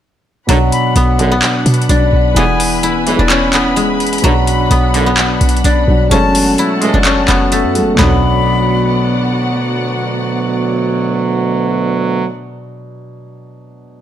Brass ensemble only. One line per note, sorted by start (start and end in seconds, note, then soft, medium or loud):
0.49 0.57 B1 loud
0.49 0.57 F#2 loud
0.49 0.57 D3 loud
1.19 1.34 B1 loud
1.19 1.34 F#2 loud
1.19 1.34 D3 loud
2.36 2.44 B1 loud
2.36 2.44 G#2 medium
2.36 2.44 E3 loud
3.07 3.22 B1 loud
3.07 3.22 G#2 loud
3.07 3.22 E3 loud
4.24 4.32 B1 loud
4.24 4.32 F#2 loud
4.24 4.32 D3 loud
4.94 5.09 B1 loud
4.94 5.09 F#2 loud
4.94 5.09 D3 loud
6.11 6.19 A1 loud
6.11 6.19 G#2 medium
6.11 6.19 C#3 loud
6.82 6.97 C#2 loud
6.82 6.97 A2 loud
6.82 6.97 G#3 loud
7.99 12.26 D2 medium
7.99 12.26 B2 medium
7.99 12.26 F#3 loud